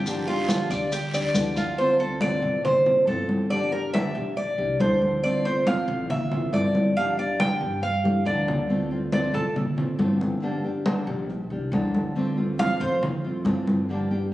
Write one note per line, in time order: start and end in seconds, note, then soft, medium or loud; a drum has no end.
0.00 0.64 G1 medium
0.00 0.26 G4 medium
0.06 0.27 D3 medium
0.06 0.27 F3 medium
0.06 0.27 A#3 medium
0.06 0.27 D4 medium
0.06 0.26 G4 medium
0.06 high conga soft
0.06 long guiro medium
0.06 maracas medium
0.27 0.48 A#3 soft
0.27 0.49 D4 soft
0.27 0.69 F4 medium
0.27 0.48 G4 medium
0.27 high conga soft
0.49 0.69 D3 medium
0.49 0.70 F3 medium
0.49 0.70 A#3 medium
0.49 0.70 D4 medium
0.49 0.70 G4 medium
0.49 high conga loud
0.49 short guiro medium
0.49 maracas medium
0.70 1.31 D2 medium
0.70 0.91 A#3 soft
0.70 0.92 D4 soft
0.70 0.91 G4 soft
0.70 0.91 D5 medium
0.70 high conga soft
0.70 short guiro medium
0.70 maracas soft
0.92 1.13 G4 medium
0.92 muted nylon-string guitar stroke medium
0.92 high conga soft
0.92 long guiro medium
0.92 maracas medium
1.13 1.35 A#3 soft
1.13 1.35 D4 soft
1.13 1.34 G4 soft
1.13 1.56 D5 medium
1.13 high conga soft
1.13 maracas medium
1.34 2.36 D2 medium
1.34 1.77 D3 medium
1.34 1.77 F3 medium
1.34 1.78 A#3 medium
1.34 1.78 D4 medium
1.34 1.78 G4 medium
1.34 high conga medium
1.34 short guiro medium
1.34 maracas medium
1.56 1.78 F4 medium
1.56 high conga medium
1.56 short guiro medium
1.56 maracas soft
1.78 1.99 D3 medium
1.78 1.99 A3 medium
1.78 1.99 C4 medium
1.78 1.98 F4 medium
1.78 1.99 C5 medium
1.78 high conga soft
1.99 2.20 A3 soft
1.99 2.21 C4 soft
1.99 2.20 F4 soft
1.99 2.21 A4 medium
1.99 high conga soft
2.21 2.42 D3 medium
2.21 2.42 A3 medium
2.21 2.42 C4 medium
2.21 2.41 F4 medium
2.21 2.62 D5 medium
2.21 high conga loud
2.42 3.03 A1 medium
2.42 2.63 A3 soft
2.42 2.64 C4 soft
2.42 2.63 F4 soft
2.64 3.05 C5 medium
2.64 muted nylon-string guitar stroke medium
2.64 high conga soft
2.64 low conga medium
2.86 3.07 A3 soft
2.86 3.07 C4 soft
2.86 3.07 F4 soft
2.86 high conga soft
2.86 low conga medium
3.07 4.09 G1 medium
3.07 3.50 D3 medium
3.07 3.50 A3 medium
3.07 3.50 C4 medium
3.07 3.51 F4 medium
3.07 3.68 A4 medium
3.07 high conga medium
3.29 high conga medium
3.50 3.71 D3 medium
3.50 3.72 F3 medium
3.50 3.72 A#3 medium
3.50 3.72 D4 medium
3.50 3.72 G4 medium
3.50 3.71 D5 medium
3.50 high conga soft
3.72 3.94 A#3 soft
3.72 3.94 D4 soft
3.72 3.93 G4 medium
3.72 3.93 A#4 medium
3.72 high conga soft
3.94 4.15 D3 medium
3.94 4.15 F3 medium
3.94 4.15 A#3 medium
3.94 4.15 D4 medium
3.94 4.14 G4 medium
3.94 4.34 E5 loud
3.94 high conga medium
4.15 4.55 A#1 medium
4.15 4.36 A#3 soft
4.15 4.36 D4 soft
4.15 4.36 G4 soft
4.15 high conga soft
4.37 4.77 D5 medium
4.37 muted nylon-string guitar stroke medium
4.37 high conga soft
4.58 4.78 C2 medium
4.58 4.80 A#3 soft
4.58 4.80 D4 soft
4.58 4.79 G4 soft
4.58 high conga soft
4.80 5.82 D2 medium
4.80 5.22 D3 medium
4.80 5.23 F3 medium
4.80 5.23 A#3 medium
4.80 5.23 D4 medium
4.80 5.23 G4 medium
4.80 5.41 C5 medium
4.80 high conga medium
5.02 high conga medium
5.23 5.44 D3 medium
5.23 5.44 A3 medium
5.23 5.45 C4 medium
5.23 5.44 F4 medium
5.23 5.44 D5 medium
5.23 high conga soft
5.45 5.66 A3 soft
5.45 5.66 C4 soft
5.45 5.66 F4 medium
5.45 5.66 C5 medium
5.45 high conga soft
5.66 5.87 D3 medium
5.66 5.87 A3 medium
5.66 5.88 C4 medium
5.66 5.87 F4 medium
5.66 6.07 F5 medium
5.66 high conga medium
5.88 6.49 A1 medium
5.88 6.09 A3 soft
5.88 6.09 C4 soft
5.88 6.09 F4 soft
6.10 6.50 E5 medium
6.10 muted nylon-string guitar stroke medium
6.10 high conga soft
6.10 low conga medium
6.31 6.53 A3 soft
6.31 6.52 C4 soft
6.31 6.52 F4 soft
6.31 high conga soft
6.31 low conga medium
6.53 7.55 G1 medium
6.53 6.95 D3 medium
6.53 6.96 A3 medium
6.53 6.96 C4 medium
6.53 6.96 F4 medium
6.53 7.14 D5 medium
6.53 high conga medium
6.75 high conga medium
6.97 7.17 D3 medium
6.97 7.17 F3 medium
6.97 7.17 A#3 medium
6.97 7.18 D4 medium
6.97 7.17 G4 medium
6.97 7.17 F5 medium
6.97 high conga soft
7.18 7.39 A#3 soft
7.18 7.39 D4 soft
7.18 7.39 G4 soft
7.18 7.39 D5 medium
7.18 high conga soft
7.39 7.60 D3 medium
7.39 7.60 F3 medium
7.39 7.61 A#3 medium
7.39 7.61 D4 medium
7.39 7.60 G4 medium
7.39 7.80 G5 medium
7.39 high conga loud
7.61 8.22 G2 medium
7.61 7.82 A#3 soft
7.61 7.82 D4 soft
7.61 7.82 G4 soft
7.61 high conga soft
7.83 8.23 F5 medium
7.83 muted nylon-string guitar stroke medium
7.83 high conga soft
8.04 8.25 A#3 soft
8.04 8.25 D4 soft
8.04 8.25 G4 medium
8.04 high conga medium
8.25 9.28 D2 medium
8.25 8.68 D3 medium
8.25 8.68 F3 medium
8.25 8.69 A#3 medium
8.25 8.69 D4 medium
8.25 8.69 G4 medium
8.25 8.87 D5 medium
8.25 high conga medium
8.48 low conga medium
8.69 8.90 D3 medium
8.69 8.90 A3 medium
8.69 8.90 C4 medium
8.69 8.90 F4 medium
8.69 high conga soft
8.91 9.12 A3 soft
8.91 9.12 C4 soft
8.91 9.12 F4 medium
8.91 high conga soft
9.12 9.33 D3 medium
9.12 9.34 A3 medium
9.12 9.33 C4 medium
9.12 9.33 F4 medium
9.12 9.34 D5 medium
9.12 high conga medium
9.34 9.95 A1 medium
9.34 9.55 A3 soft
9.34 9.55 C4 soft
9.34 9.55 F4 soft
9.34 9.55 A4 medium
9.55 muted nylon-string guitar stroke medium
9.55 high conga soft
9.55 low conga medium
9.77 9.98 A3 soft
9.77 9.98 C4 soft
9.77 9.98 F4 soft
9.77 high conga soft
9.77 low conga medium
9.99 11.01 G1 medium
9.99 10.41 D3 medium
9.99 10.42 A3 medium
9.99 10.42 C4 medium
9.99 10.42 F4 medium
9.99 high conga medium
10.21 high conga medium
10.42 10.63 D3 medium
10.42 10.63 F3 medium
10.42 10.63 A#3 medium
10.42 10.64 D4 medium
10.42 10.63 G4 medium
10.42 high conga soft
10.64 10.86 A#3 soft
10.64 10.85 D4 medium
10.64 10.85 G4 medium
10.64 high conga soft
10.86 11.07 D3 medium
10.86 11.07 F3 medium
10.86 11.07 A#3 medium
10.86 11.07 D4 medium
10.86 11.07 G4 medium
10.86 high conga loud
11.07 11.48 A#1 medium
11.07 11.29 A#3 soft
11.07 11.29 D4 soft
11.07 11.28 G4 soft
11.07 high conga soft
11.29 muted nylon-string guitar stroke medium
11.29 high conga soft
11.50 11.71 C2 medium
11.50 11.72 A#3 soft
11.50 11.72 D4 soft
11.50 11.72 G4 soft
11.50 high conga soft
11.72 12.74 D2 medium
11.72 12.14 D3 medium
11.72 12.15 F3 medium
11.72 12.15 A#3 medium
11.72 12.16 D4 medium
11.72 12.16 G4 medium
11.72 high conga medium
11.95 high conga medium
12.15 12.36 D3 medium
12.15 12.37 A3 medium
12.15 12.37 C4 medium
12.15 12.36 F4 medium
12.15 high conga soft
12.37 12.59 A3 soft
12.37 12.59 C4 soft
12.37 12.58 F4 soft
12.37 high conga soft
12.59 12.80 D3 medium
12.59 12.80 A3 medium
12.59 12.81 C4 medium
12.59 12.80 F4 medium
12.59 12.80 F5 loud
12.59 high conga medium
12.80 13.42 F2 medium
12.80 13.02 A3 soft
12.80 13.02 C4 soft
12.80 13.02 F4 soft
12.80 13.02 C5 medium
13.03 muted nylon-string guitar stroke medium
13.03 high conga soft
13.03 low conga medium
13.24 13.45 A3 soft
13.24 13.46 C4 soft
13.24 13.45 F4 soft
13.24 high conga soft
13.45 14.34 G2 medium
13.45 13.88 D3 medium
13.45 13.89 A3 medium
13.45 13.89 C4 medium
13.45 13.89 F4 medium
13.45 high conga medium
13.67 high conga medium
13.89 14.10 D3 medium
13.89 14.10 F3 medium
13.89 14.11 A#3 medium
13.89 14.10 D4 medium
13.89 14.09 G4 medium
13.89 high conga soft
14.11 14.31 A#3 soft
14.11 14.32 D4 soft
14.11 14.32 G4 medium
14.11 high conga soft